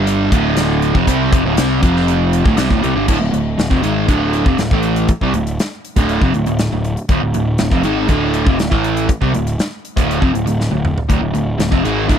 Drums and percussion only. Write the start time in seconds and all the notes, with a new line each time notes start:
0.07 closed hi-hat
0.32 kick, closed hi-hat
0.57 snare, closed hi-hat
0.82 closed hi-hat
0.95 kick
1.07 kick, closed hi-hat
1.33 kick, closed hi-hat
1.57 snare, closed hi-hat
1.83 kick, closed hi-hat
1.96 snare
2.08 closed hi-hat
2.33 closed hi-hat
2.46 kick
2.57 snare, closed hi-hat
2.70 kick
2.84 closed hi-hat
3.08 kick, crash
3.34 closed hi-hat
3.59 snare, closed hi-hat
3.71 kick
3.83 closed hi-hat
4.09 kick, closed hi-hat
4.33 closed hi-hat
4.46 kick
4.58 snare, closed hi-hat
4.71 kick
4.83 closed hi-hat
4.96 closed hi-hat
5.08 kick, closed hi-hat
5.21 kick
5.34 closed hi-hat
5.47 closed hi-hat
5.59 snare, closed hi-hat
5.85 closed hi-hat
5.96 kick, closed hi-hat
6.09 closed hi-hat
6.21 kick
6.34 closed hi-hat
6.46 closed hi-hat
6.59 snare, closed hi-hat
6.84 closed hi-hat
6.97 closed hi-hat
7.09 kick, closed hi-hat
7.34 closed hi-hat
7.58 snare, closed hi-hat
7.71 kick
7.83 closed hi-hat
8.08 kick, closed hi-hat
8.34 closed hi-hat
8.47 kick
8.59 snare, closed hi-hat
8.72 kick
8.84 closed hi-hat
8.97 closed hi-hat
9.09 kick, closed hi-hat
9.22 kick
9.34 closed hi-hat
9.47 closed hi-hat
9.59 snare, closed hi-hat
9.85 closed hi-hat
9.97 kick, closed hi-hat
10.11 closed hi-hat
10.22 kick
10.35 closed hi-hat
10.47 closed hi-hat
10.61 snare
10.85 mid tom
10.98 floor tom
11.10 kick, closed hi-hat
11.35 closed hi-hat
11.60 snare, closed hi-hat
11.72 kick
11.85 closed hi-hat
12.09 kick, closed hi-hat